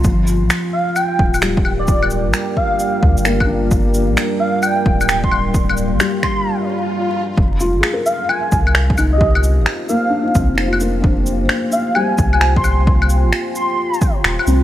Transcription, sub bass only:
X:1
M:4/4
L:1/16
Q:"Swing 16ths" 1/4=131
K:Gphr
V:1 name="Sub bass" clef=bass
G,,,3 B,,, z6 D,,,6- | D,,,3 B,,, z6 D,, G,,,4- G,,, | G,,,3 B,,, z6 D,,,6- | D,,,3 B,,, z12 |
F,,,3 A,,, z6 C,,6- | C,,3 A,,, z6 C,, F,,,4- F,,, | F,,,3 A,,, z6 C,,6- | C,,3 A,,, z8 E,,, z C,,2 |]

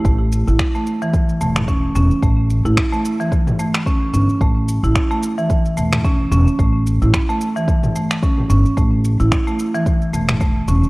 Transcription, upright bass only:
X:1
M:4/4
L:1/16
Q:"Swing 16ths" 1/4=110
K:A
V:1 name="Upright bass" clef=bass
A,,,3 A,,, z6 E,,,4 E,,, z | A,,,3 A,,, z8 z2 =G,,, z | A,,,3 A,,, z6 E,,,4 E,,, z | A,,,3 A,,, z8 z2 =G,,, z |
A,,,3 A,,, z6 E,,,4 E,,, z |]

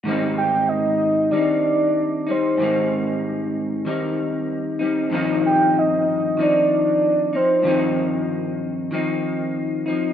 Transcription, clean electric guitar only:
X:1
M:4/4
L:1/8
Q:"Swing 16ths" 1/4=95
K:Ablyd
V:1 name="Clean electric guitar"
[A,,E,G,CE]4 [E,G,CE]3 [G,CE] | [A,,E,G,CE]4 [E,G,CE]3 [G,CE] | [G,,E,F,CE]4 [E,F,CE]3 [F,CE] | [G,,E,F,CE]4 [E,F,CE]3 [F,CE] |]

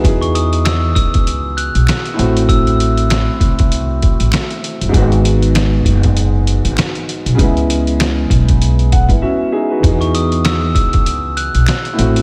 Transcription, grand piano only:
X:1
M:4/4
L:1/16
Q:"Swing 16ths" 1/4=98
K:E
V:1 name="Grand piano"
[FB] z12 z3 | z16 | z16 | z8 z2 f [B,E] [CFe]2 [DGe] [FB]- |
[FB] z12 z3 |]
V:2 name="Grand piano"
[E,B,DG]12- [E,B,DG]2 [A,,A,=CF]2- | [A,,A,=CF]12- [A,,A,CF]2 z2 | [G,,G,B,F]16 | [C,G,B,E]16 |
[E,B,DG]12- [E,B,DG]2 [A,,A,=CF]2 |]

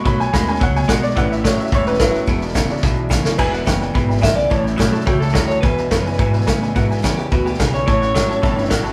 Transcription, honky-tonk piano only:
X:1
M:4/4
L:1/8
Q:1/4=215
K:Emix
V:1 name="Honky-tonk piano"
b g b g f g f d | f e c e c B [B,E]2- | [B,E] z6 z | [Beg] [Bef] [Bef] [Beg] [Beb] [Beb] [Bef] [Beg] |
[cea] [ce=g] [ceg] [cea] [ceg] [cea] [ceb] [cea] | [Beg] [Beg] [Beb] [Beg] [Beg] [Beg] [Beg] [Beg] | [Bef] [Beg] [Beg] [Beg] [Beb] [Beg] [Beg] [Beg] | [cea] [cef] [cef] [cea] [cea] [ceb] [cef] [cea] |]
V:2 name="Honky-tonk piano"
z3 [^D,C] z4 | [=G,B,C]3 z2 [G,B,C] z2 | z3 [F,G,D]3 z2 | z8 |
z8 | z8 | z8 | z8 |]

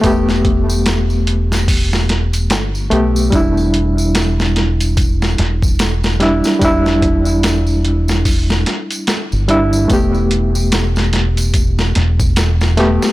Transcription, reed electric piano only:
X:1
M:4/4
L:1/8
Q:"Swing 16ths" 1/4=73
K:Em
V:1 name="Reed electric piano"
[A,B,G]6- [A,B,G] [A,B,G] | [G,DE]6- [G,DE] [G,DE] | [G,DE]6- [G,DE] [G,DE] | [A,B,G]6- [A,B,G] [A,B,G] |]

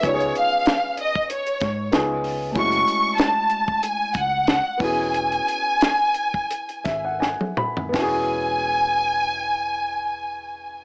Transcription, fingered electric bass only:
X:1
M:4/4
L:1/16
Q:"Swing 16ths" 1/4=90
K:E
V:1 name="Fingered electric bass" clef=bass
C,,2 z8 G,,2 C,,4 | F,,,2 z8 C,,3 z E,,,2- | E,,,2 z8 G,,,3 z3 | E,,,16 |]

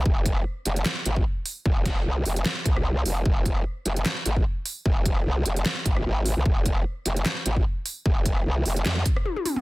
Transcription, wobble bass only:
X:1
M:4/4
L:1/16
Q:"Swing 16ths" 1/4=150
K:Fm
V:1 name="Wobble bass" clef=bass
F,,,4 z2 F,,,2 z2 A,,,2 z4 | F,,,4 C,,2 F,,,2 z2 C,,4 F,,,2 | F,,,4 z2 F,,,2 z2 A,,,2 z4 | F,,,4 C,,2 F,,,2 z2 A,,,2 A,,,3 C,, |
F,,,4 z2 F,,,2 z2 A,,,2 z4 | F,,,4 C,,2 F,,,2 F,,2 z6 |]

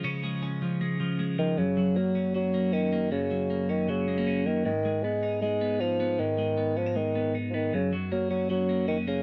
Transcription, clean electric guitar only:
X:1
M:4/4
L:1/16
Q:1/4=156
K:F#
V:1 name="Clean electric guitar"
[C,E,G,C]2 G,2 C2 E,2 G,2 E,2 G,2 E,2 | F,,2 F,2 A,2 C2 F,2 A,2 C2 A,2 | F,,2 F,2 A,2 C2 F,2 G, A, C2 A,2 | G,,2 G,2 B,2 D2 G,2 B,2 D2 B,2 |
G,,2 G,2 B,2 C D G,2 B,2 D2 B,2 | F,,2 F,2 A,2 C2 F,2 A,2 C2 A,2 |]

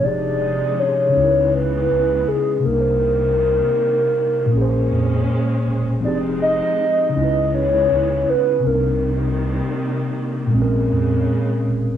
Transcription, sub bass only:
X:1
M:4/4
L:1/16
Q:"Swing 16ths" 1/4=80
K:Cm
V:1 name="Sub bass" clef=bass
F,,,3 z3 _D,,4 D,,2 z2 C,,2- | C,,3 z4 z B,,,2 F,,2 z2 =E,,,2 | F,,,3 z3 _D,,4 D,,2 z2 C,,2- | C,,3 z4 z B,,,2 F,,2 z2 =E,,,2 |]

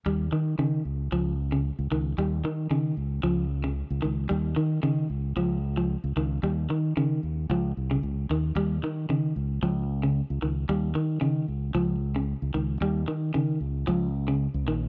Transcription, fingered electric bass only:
X:1
M:4/4
L:1/16
Q:1/4=113
K:Ebmix
V:1 name="Fingered electric bass" clef=bass
E,,2 E,2 E,2 D,,2 D,,4- D,, D,, D,,2 | E,,2 E,2 E,2 D,,2 D,,4- D,, D,, D,,2 | E,,2 E,2 E,2 D,,2 D,,4- D,, D,, D,,2 | E,,2 E,2 E,2 E,,2 D,,2 C,,2 D,,2 E,,2 |
E,,2 E,2 E,2 D,,2 D,,4- D,, D,, D,,2 | E,,2 E,2 E,2 D,,2 D,,4- D,, D,, D,,2 | E,,2 E,2 E,2 D,,2 D,,4- D,, D,, B,,,2 |]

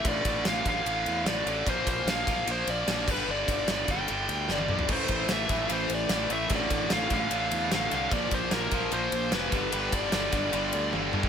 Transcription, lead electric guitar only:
X:1
M:4/4
L:1/8
Q:1/4=149
K:Dm
V:1 name="Lead electric guitar"
d2 f f3 d2 | c c f2 c d2 =B | d2 d g3 d2 | c c e2 c d2 e |
d2 f f3 f f | d c B2 c2 =B2 | =B d d4 z2 |]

